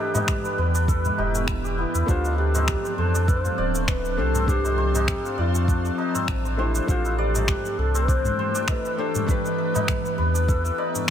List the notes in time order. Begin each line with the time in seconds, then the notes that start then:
Already playing: E3 A3 C4 D4 E4 G4 A4 B4 C5 D5
0.00 B3 D4
0.14 B3, tabla na, tabla tin, tabla ge, shaker
0.28 D4, finger snap, kick, shaker
0.38 B4
0.45 B4, shaker
0.58 E2 B4
0.75 D4, shaker
0.88 A4, kick, shaker
1.05 E4, tabla tin, tabla ge, shaker
1.18 E1 G4, tabla na
1.34 A3, tabla ge, shaker
1.48 E4, finger snap, kick, shaker
1.64 G4, shaker
1.78 B3 E4, tabla tin
1.94 E2 E4, tabla tin, shaker
2.06 D2 F3 A3 D4 F4 G4 C5, kick, shaker
2.24 D4, tabla na, tabla tin, shaker
2.38 D4 G4
2.42 C4
2.54 C4, tabla na, tabla tin, tabla ge, shaker
2.68 C5, finger snap, kick, shaker
2.84 C5, shaker
2.98 F2 A4 C5
3.14 D4, shaker
3.28 A4 B4, kick, shaker
3.40 C5
3.44 F4, tabla ge, shaker
3.58 D1 D5
3.74 A3, shaker
3.88 D4 B4, finger snap, kick, tabla tin, shaker
4.04 D4, shaker
4.17 C2 A3 D4 G4 A4 C5
4.34 C4, tabla ge, shaker
4.46 A3 D4 G4, kick, shaker
4.50 C5
4.64 C5, tabla na, shaker
4.78 C5
4.94 D4, tabla na, tabla tin, tabla ge, shaker
5.08 finger snap, kick, shaker
5.24 F4, shaker
5.38 F2 F4 D5
5.55 A3, shaker
5.68 D4, kick, shaker
5.85 D4, shaker
5.98 D4, tabla na
6.15 C4, tabla ge, shaker
6.28 A1 D4, finger snap, kick, shaker
6.45 C5, shaker
6.57 A3 D4 E4 G4 C5, tabla tin
6.75 D4, shaker
6.86 A1 E3 A3 D4 F4 G4 A4, kick, shaker
6.90 C5
6.96 A3
7.04 E4, tabla na, tabla tin, shaker
7.18 G4 D5
7.34 A3, tabla na, tabla tin, tabla ge, shaker
7.48 D4, finger snap, kick, shaker
7.65 D4, shaker
7.78 C2 D4 A4
7.95 C4, shaker
8.08 D4 C5, kick, shaker
8.24 C5, tabla ge, shaker
8.39 C5
8.55 D4, shaker
8.68 A4 B4, finger snap, kick, tabla tin, shaker
8.85 E4, shaker
8.97 A3 D4 G4 A4 C5 D5
9.15 A3, tabla ge, shaker
9.26 A3 D4 G4 B4, kick, shaker
9.31 B4
9.44 D4, tabla na, tabla tin, shaker
9.58 D4
9.74 B3, tabla na, tabla tin, tabla ge, shaker
9.81 B4
9.88 finger snap, kick, shaker
10.04 B4, shaker
10.18 E2 B4
10.34 D4, shaker
10.48 A4, kick, shaker
10.64 E4, shaker
10.78 D5, tabla na
10.94 A3, tabla ge, shaker